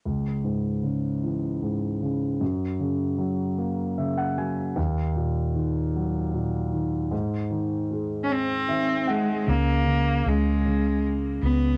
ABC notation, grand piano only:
X:1
M:6/8
L:1/16
Q:3/8=51
K:C#dor
V:1 name="Grand piano"
z12 | z8 e f g2 | z12 | z8 e2 f2 |
z12 |]
V:2 name="Grand piano" clef=bass
C,,2 G,,2 C,2 E,2 G,,2 C,2 | F,,2 C,2 F,2 A,2 C,2 F,2 | D,,2 A,,2 D,2 F,2 A,,2 D,2 | G,,2 D,2 G,2 ^B,2 D,2 G,2 |
C,2 C,2 C,2 C,6 |]